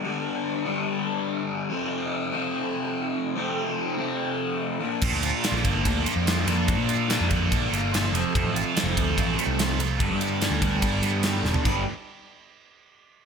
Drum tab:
CC |----------------|----------------|----------------|x---------------|
RD |----------------|----------------|----------------|--x-x-x-x-x-x-x-|
SD |----------------|----------------|----------------|----oo------o---|
FT |----------------|----------------|----------------|----------------|
BD |----------------|----------------|----------------|o-----o-o-------|

CC |----------------|----------------|----------------|x---------------|
RD |x-x-x-x-x-x-x-x-|x-x-x-x-x-x-x-x-|x-x-x-x-x-x-x---|----------------|
SD |----o-------o---|----o-------o---|----o-------o-o-|----------------|
FT |----------------|----------------|---------------o|----------------|
BD |o-----o-o-------|o-----o-o-------|o-----o-o-------|o---------------|